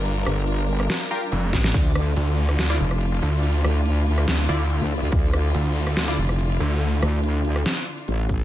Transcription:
<<
  \new Staff \with { instrumentName = "Supersaw synth" } { \time 4/4 \key d \minor \tempo 4 = 142 r2 r8 <f' g' bes'>16 r4 r16 | r2 r16 <e' f' d''>16 r4. | r2 r8 <e' f' d''>16 r4 r16 | r2 r16 <e' f' d''>16 r4. |
r1 | }
  \new Staff \with { instrumentName = "String section" } { \time 4/4 \key d \minor << { <g f' bes'>1 | <d e' f'>1~ | <d e' f'>1~ | <d e' f'>1~ |
<d e' f'>1 | } \\ { d'1~ | d'1~ | d'1~ | d'1~ |
d'1 | } >> }
  \new Staff \with { instrumentName = "Detuned saw bass" } { \clef bass \time 4/4 \key d \minor g,,8 r2 r8 f,,8 r8 | r4 d,4. r4 d,8~ | d,8 r2 d,8 r4 | r4 d,4. r4 d,8~ |
d,8 r2. r8 | }
  \new Staff \with { instrumentName = "Wobble bass" } { \clef bass \time 4/4 \key d \minor r8 g,,4. r4. a,,8 | d,4 r4. f,,4 r8 | r8 d,4. d,8 r8. d,8 d,16 | d,4 r4. f,,4 r8 |
r8 d,4. r4 a,,4 | }
  \new DrumStaff \with { instrumentName = "Drums" } \drummode { \time 4/4 hh8 <hh ss>8 hh8 hh16 ss16 <hh sn>8. hh16 hh8 <hho bd sn>16 sn16 | <cymc hh bd>8 <hh ss>8 hh8 hh16 ss16 <hh sn>8. <hh ss>16 hh8 hho8 | hh8 <hh ss>8 hh8 hh16 ss16 <hh sn>8. hh16 hh8 hho8 | <hh bd>8 <hh ss>8 hh8 hh16 ss16 <hh sn>8. <hh ss>16 hh8 hho8 |
hh8 <hh ss>8 hh8 hh16 ss16 <hh sn>8. hh16 hh8 <hho bd>8 | }
>>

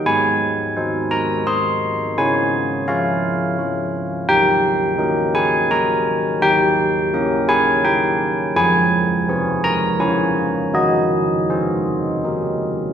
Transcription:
\new Staff \with { instrumentName = "Church bells" } { \time 3/4 \key aes \major \tempo 4 = 84 << { aes''4. bes''8 c'''4 | aes''4 f''4 r4 | g''4. aes''8 bes''4 | g''4. aes''8 g''4 |
aes''4. bes''8 aes''4 | ees''2~ ees''8 r8 | } \\ { aes4 <ees' c''>4 <ees' c''>4 | des'4 <f' des''>4 <f' des''>4 | ees4 <ees' bes'>4 <ees' bes'>4 | ees4 <des' bes'>4 <des' bes'>4 |
f4 <c' aes'>4 <des' f' aes'>4 | ees'4 <aes' c''>4 <ees' g' bes'>4 | } >> }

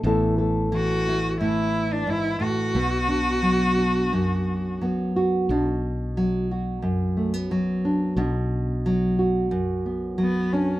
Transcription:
<<
  \new Staff \with { instrumentName = "Cello" } { \time 4/4 \key b \dorian \tempo 4 = 89 r4 fis'4 e'8. d'16 e'8 fis'8~ | fis'2. r4 | r1 | r2. b8 cis'8 | }
  \new Staff \with { instrumentName = "Nylon-string guitar" } { \time 4/4 \key b \dorian << { <e b e' a'>8 a'4 e'2~ e'8 | b8 d'4 d'4. b8 fis'8 | d'4. fis'4 a16 b8. d'8 | d'4. fis'4 b4 d'8 | } \\ { a,4 e4 a,4 gis,8 a,8 | b,4 fis4 fis,4 fis4 | b,4 fis4 fis,4 fis4 | b,4 fis4 fis,4 fis4 | } >> }
  \new Staff \with { instrumentName = "Fretless electric bass" } { \clef bass \time 4/4 \key b \dorian a,,1 | b,,1 | b,,1 | b,,1 | }
>>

